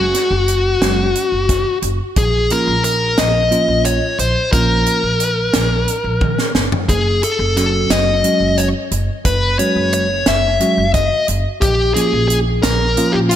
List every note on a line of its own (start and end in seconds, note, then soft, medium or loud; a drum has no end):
0.00 0.11 F#1 medium
0.00 1.78 F#4 medium
0.14 snare soft
0.14 closed hi-hat medium
0.31 0.77 F#1 medium
0.48 closed hi-hat soft
0.81 1.12 F#1 medium
0.81 1.05 F#3 medium
0.81 1.05 G#3 medium
0.81 1.06 C#4 medium
0.81 1.06 F#4 medium
0.81 snare medium
0.81 closed hi-hat medium
1.15 closed hi-hat medium
1.32 1.62 F#1 medium
1.49 kick medium
1.49 snare soft
1.49 closed hi-hat medium
1.82 1.98 F#1 medium
1.82 closed hi-hat medium
2.16 2.47 A#1 medium
2.16 2.52 G#4 medium
2.16 kick loud
2.16 closed hi-hat medium
2.50 2.74 F3 medium
2.50 2.75 A#3 medium
2.50 2.75 C#4 medium
2.50 2.75 F4 medium
2.50 2.83 A#4 medium
2.50 closed hi-hat medium
2.67 3.14 A#1 medium
2.84 3.19 A#4 medium
2.84 closed hi-hat soft
3.18 3.48 A#1 medium
3.18 3.88 D#5 medium
3.18 snare medium
3.18 closed hi-hat medium
3.51 3.99 F3 medium
3.51 3.99 A#3 medium
3.51 3.99 C#4 medium
3.51 3.99 F4 medium
3.51 closed hi-hat soft
3.68 3.99 A#1 medium
3.85 4.19 C#5 medium
3.85 closed hi-hat medium
4.19 4.34 A#1 medium
4.19 4.52 C5 medium
4.19 closed hi-hat medium
4.52 4.83 A#1 medium
4.52 5.01 F3 medium
4.52 5.01 A#3 medium
4.52 5.01 C#4 soft
4.52 5.01 F4 medium
4.52 6.51 A#4 medium
4.52 kick loud
4.52 closed hi-hat medium
4.86 closed hi-hat medium
5.03 5.50 A#1 medium
5.20 closed hi-hat medium
5.53 5.84 A#1 medium
5.53 snare loud
5.53 closed hi-hat medium
5.88 closed hi-hat soft
6.04 6.35 A#1 medium
6.21 kick medium
6.21 high tom soft
6.38 snare soft
6.55 6.70 G1 medium
6.55 snare medium
6.72 floor tom medium
6.89 7.20 F#1 medium
6.89 7.21 G#4 medium
6.89 kick medium
6.89 closed hi-hat medium
7.23 7.57 A4 medium
7.23 closed hi-hat medium
7.39 7.86 F#1 medium
7.56 8.23 F#3 medium
7.56 8.24 C#4 medium
7.56 8.24 F#4 medium
7.56 7.92 A4 medium
7.56 snare soft
7.56 closed hi-hat medium
7.90 8.21 F#1 medium
7.90 8.60 D#5 medium
7.90 snare medium
7.90 closed hi-hat medium
8.24 8.72 F#3 medium
8.24 8.71 G#3 medium
8.24 8.72 C#4 medium
8.24 8.72 F#4 medium
8.24 closed hi-hat medium
8.40 8.71 F#1 medium
8.58 8.67 C#5 medium
8.58 closed hi-hat medium
8.91 9.07 F#1 medium
8.91 closed hi-hat medium
9.25 9.56 F#1 medium
9.25 9.57 B4 medium
9.25 kick medium
9.25 closed hi-hat medium
9.58 10.06 F#3 medium
9.58 10.06 G#3 medium
9.58 10.06 C#4 medium
9.58 10.06 F#4 medium
9.58 9.92 C#5 medium
9.58 closed hi-hat medium
9.76 10.23 F#1 medium
9.93 10.28 C#5 medium
9.93 closed hi-hat soft
10.26 10.57 F#1 medium
10.26 10.91 E5 medium
10.26 snare medium
10.26 closed hi-hat medium
10.60 10.84 F#3 medium
10.60 10.84 G#3 medium
10.60 10.84 C#4 medium
10.60 10.85 F#4 medium
10.60 closed hi-hat soft
10.78 11.08 F#1 medium
10.94 11.26 D#5 medium
10.94 kick medium
10.94 closed hi-hat medium
11.28 11.44 F#1 medium
11.28 closed hi-hat medium
11.61 11.92 A#1 medium
11.61 11.93 G4 medium
11.61 kick loud
11.61 closed hi-hat medium
11.94 12.43 F3 medium
11.94 12.43 A#3 medium
11.94 12.43 C#4 medium
11.94 12.43 F4 medium
11.94 12.26 G#4 medium
11.94 closed hi-hat medium
12.13 12.59 A#1 medium
12.28 12.37 G#4 medium
12.28 closed hi-hat medium
12.62 12.94 A#1 medium
12.62 13.15 A#4 loud
12.62 snare loud
12.62 closed hi-hat medium
12.97 13.36 F3 medium
12.97 13.36 A#3 medium
12.97 13.36 C#4 medium
12.97 13.36 F4 medium
12.97 closed hi-hat medium
13.12 13.36 A#1 medium
13.12 13.17 G4 medium
13.29 13.36 F4 medium
13.29 closed hi-hat medium